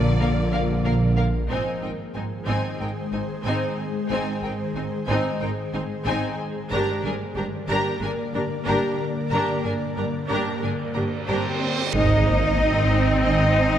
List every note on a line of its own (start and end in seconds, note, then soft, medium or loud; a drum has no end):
0.00 0.12 A#1 medium
0.00 1.50 A#1 medium
0.00 1.18 D3 medium
0.00 1.14 F3 medium
0.00 1.46 F3 medium
0.00 1.14 A#3 medium
0.00 1.51 A#3 medium
0.00 1.14 D4 medium
0.00 1.46 F4 medium
0.00 1.50 A#4 medium
0.00 1.17 D5 medium
0.20 0.77 A#1 medium
0.20 0.28 A#3 medium
0.20 0.28 A#4 medium
0.20 0.29 F5 medium
0.52 0.60 A#3 soft
0.52 0.60 A#4 soft
0.52 0.62 F5 medium
0.85 1.43 A#1 medium
0.85 0.93 A#3 medium
0.85 0.93 A#4 medium
0.85 0.94 F5 medium
1.17 1.25 A#3 soft
1.17 1.25 A#4 medium
1.17 1.26 F5 medium
1.49 1.58 G#1 soft
1.49 1.57 G#2 soft
1.49 6.68 D#3 medium
1.49 6.68 G#3 medium
1.49 1.80 C4 soft
1.49 1.80 D#4 soft
1.49 6.68 G#4 medium
1.49 1.80 C5 soft
1.49 6.68 C5 medium
1.49 1.80 G#5 soft
1.82 1.91 G#1 soft
1.82 1.90 G#2 soft
1.82 1.90 C4 soft
1.82 1.90 D#4 soft
1.82 1.90 A#4 soft
1.82 1.91 G5 soft
2.14 2.23 G#1 soft
2.14 2.23 G#2 soft
2.14 2.23 C4 soft
2.14 2.24 D#4 soft
2.14 2.22 C5 soft
2.14 2.22 G#5 soft
2.47 2.55 G#1 soft
2.47 2.55 G#2 soft
2.47 2.78 C4 soft
2.47 2.78 D#4 soft
2.47 2.78 C5 soft
2.47 2.78 G#5 soft
2.80 2.88 G#1 soft
2.80 2.88 G#2 soft
2.80 2.88 C4 soft
2.80 2.88 D#4 soft
2.80 2.89 A#4 soft
2.80 2.89 G5 soft
3.12 3.20 G#1 soft
3.12 3.21 G#2 soft
3.12 3.21 C4 soft
3.12 3.21 D#4 soft
3.12 3.20 C5 soft
3.12 3.21 G#5 soft
3.44 3.53 G#1 soft
3.44 3.54 G#2 medium
3.44 3.76 C4 soft
3.44 3.76 D#4 soft
3.44 3.75 C5 soft
3.44 3.75 G#5 soft
4.10 4.18 G#1 soft
4.10 4.18 G#2 soft
4.10 4.41 C4 soft
4.10 4.41 D#4 soft
4.10 4.41 C5 soft
4.10 4.41 G#5 medium
4.42 4.51 G#1 soft
4.42 4.50 G#2 soft
4.42 4.52 C4 soft
4.42 4.52 D#4 soft
4.42 4.51 A#4 soft
4.42 4.51 G5 soft
4.75 4.83 G#1 soft
4.75 4.83 G#2 soft
4.75 4.84 C4 soft
4.75 4.84 D#4 soft
4.75 4.84 C5 soft
4.75 4.83 G#5 soft
5.07 5.16 G#1 medium
5.07 5.16 G#2 medium
5.07 5.39 C4 medium
5.07 5.39 D#4 medium
5.07 5.38 C5 soft
5.07 5.38 G#5 soft
5.40 5.49 G#1 soft
5.40 5.49 G#2 soft
5.40 5.49 C4 soft
5.40 5.49 D#4 soft
5.40 5.49 A#4 soft
5.40 5.48 G5 soft
5.73 5.81 G#1 soft
5.73 5.81 G#2 soft
5.73 5.82 C4 soft
5.73 5.82 D#4 soft
5.73 5.82 C5 soft
5.73 5.82 G#5 soft
6.06 6.14 G#1 medium
6.06 6.14 G#2 medium
6.06 6.37 C4 medium
6.06 6.37 D#4 soft
6.06 6.36 C5 medium
6.06 6.37 G#5 medium
6.71 6.79 G1 medium
6.71 6.79 G2 medium
6.71 11.93 D3 medium
6.71 11.93 A#3 medium
6.71 7.02 D4 medium
6.71 7.02 G4 medium
6.71 7.02 A#4 medium
6.71 11.93 A#4 medium
6.71 11.94 D5 medium
6.71 7.02 A#5 medium
7.04 7.12 G1 soft
7.04 7.12 G2 soft
7.04 7.13 D4 soft
7.04 7.13 G#4 soft
7.04 7.13 A#4 soft
7.04 7.13 G#5 soft
7.36 7.44 G1 soft
7.36 7.44 G2 medium
7.36 7.44 D4 soft
7.36 7.44 G4 soft
7.36 7.45 A#4 soft
7.36 7.45 A#5 soft
7.68 7.76 G1 medium
7.68 7.76 G2 medium
7.68 8.00 D4 medium
7.68 8.00 G4 medium
7.68 8.00 A#4 medium
7.68 8.00 A#5 medium
8.01 8.09 G1 soft
8.01 8.09 G2 soft
8.01 8.10 D4 soft
8.01 8.10 G#4 soft
8.01 8.10 A#4 soft
8.01 8.11 G#5 medium
8.34 8.42 G1 soft
8.34 8.42 G2 soft
8.34 8.42 D4 soft
8.34 8.42 G4 soft
8.34 8.42 A#4 soft
8.34 8.43 A#5 soft
8.66 8.75 G1 medium
8.66 8.75 G2 medium
8.66 8.98 D4 medium
8.66 8.98 G4 medium
8.66 8.97 A#4 medium
8.66 8.97 A#5 medium
9.30 9.40 G1 soft
9.30 9.40 G2 soft
9.30 9.63 D4 medium
9.30 9.63 G4 medium
9.30 9.62 A#4 medium
9.30 9.62 A#5 medium
9.30 reverse cymbal soft
9.64 9.72 G1 soft
9.64 9.72 G2 soft
9.64 9.73 D4 soft
9.64 9.72 G#4 soft
9.64 9.72 A#4 soft
9.64 9.72 G#5 soft
9.96 10.05 G1 soft
9.96 10.06 G2 soft
9.96 10.04 D4 soft
9.96 10.05 G4 soft
9.96 10.05 A#4 soft
9.96 10.05 A#5 soft
10.29 10.38 G1 medium
10.29 10.38 G2 soft
10.29 10.60 D4 medium
10.29 10.60 G4 medium
10.29 10.60 A#4 soft
10.29 10.60 A#5 medium
10.62 10.71 G1 soft
10.62 10.70 G2 soft
10.62 10.70 D4 soft
10.62 10.71 G#4 soft
10.62 10.70 A#4 soft
10.62 10.71 G#5 soft
10.94 11.04 G1 soft
10.94 11.04 G2 soft
10.94 11.03 D4 soft
10.94 11.03 G4 soft
10.94 11.03 A#4 soft
10.94 11.02 A#5 soft
11.28 11.37 G1 soft
11.28 11.37 G2 medium
11.28 11.89 C4 medium
11.28 11.59 D4 soft
11.28 11.59 G4 soft
11.28 11.58 A#4 medium
11.28 11.89 C5 medium
11.28 11.58 A#5 soft
11.93 13.79 G#1 medium
11.93 12.51 G#1 medium
11.93 13.79 D#3 medium
11.93 12.17 D#3 medium
11.93 12.23 G#3 medium
11.93 13.79 C4 medium
11.93 12.17 C4 medium
11.93 13.23 D#4 medium
11.93 13.79 C5 medium
11.93 13.22 D#5 medium
11.93 12.24 D#5 medium
11.93 13.79 G#5 medium
11.93 impact medium
12.26 12.59 A#3 medium
12.26 12.59 C5 soft
12.59 13.17 G#1 medium
12.59 13.79 C4 medium
12.59 12.91 D#5 soft
12.91 13.24 C5 medium
13.23 13.79 G#1 medium
13.23 13.46 D#3 medium
13.23 13.47 C4 medium
13.23 13.79 D#4 medium
13.23 13.54 D#5 medium
13.23 13.79 D#5 medium
13.56 13.79 C5 soft